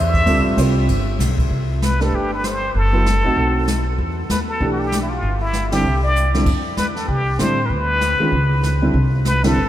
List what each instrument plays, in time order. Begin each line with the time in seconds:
Already playing: upright bass E2, muted trumpet E5
0.14 kick, ride
0.26 upright bass D2, upright piano G3 C4 F4 A4, kick, ride
0.36 upright bass C2
0.46 upright bass A1
0.57 upright bass C2, upright piano G3 C4 F4 C5, kick, hi-hat pedal, ride
0.88 upright bass G1, kick, ride
1.19 upright bass B1, kick, snare, hi-hat pedal, ride
1.38 kick, ride
1.50 upright bass C2, brush sweep, kick
1.82 muted trumpet B4, snare, hi-hat pedal
2.00 upright piano A3 D4 G4 B4, muted trumpet A4, snare
2.12 upright bass G1, muted trumpet G4, brush sweep, kick
2.34 muted trumpet B4
2.44 muted trumpet C5, snare, hi-hat pedal
2.74 upright bass F#1, muted trumpet A4, brush sweep, kick
2.92 upright piano F#3 B3 E4 A4
3.06 snare, hi-hat pedal
3.24 upright bass A1, upright piano A3 C4 D#4 F#4
3.36 upright bass B1, brush sweep, kick
3.67 snare, hi-hat pedal
3.98 upright bass E2, brush sweep, kick
4.29 upright bass D#2, muted trumpet B4, snare, hi-hat pedal
4.49 muted trumpet A4
4.60 upright bass B1, upright piano E3 A3 D4 G4, brush sweep, kick
4.72 muted trumpet F#4
4.79 muted trumpet G4
4.92 snare, hi-hat pedal
5.02 muted trumpet E4
5.10 muted trumpet F4
5.22 upright bass G1, brush sweep, kick
5.41 muted trumpet E4
5.53 snare, hi-hat pedal
5.72 upright piano D3 G3 C4 E4, muted trumpet G4, snare, ride
5.83 upright bass C2, brush sweep
6.03 muted trumpet D5
6.16 hi-hat pedal
6.34 upright piano D3 G3 C4 E4, snare
6.46 upright bass F2, brush sweep, kick, crash
6.77 upright bass E2, muted trumpet B4, snare, hi-hat pedal
6.96 muted trumpet A4, snare
7.08 upright bass C2, muted trumpet G4, brush sweep, kick
7.39 upright bass A2, upright piano D3 G3 C4 E4, muted trumpet C5, snare, hi-hat pedal
7.65 muted trumpet A#4 B4
7.70 upright bass D2, brush sweep, kick
8.01 snare, hi-hat pedal
8.19 upright piano D#3 G#3 C#4 F4, muted upright bass stroke
8.32 upright bass C#2, brush sweep, kick
8.63 snare, hi-hat pedal
8.82 upright piano D3 G3 C4 E4
8.94 upright bass C2, brush sweep, kick
9.25 muted trumpet B4, snare, hi-hat pedal
9.43 upright piano D3 G3 C4 E4, muted trumpet A4, snare, ride
9.56 upright bass G1, brush sweep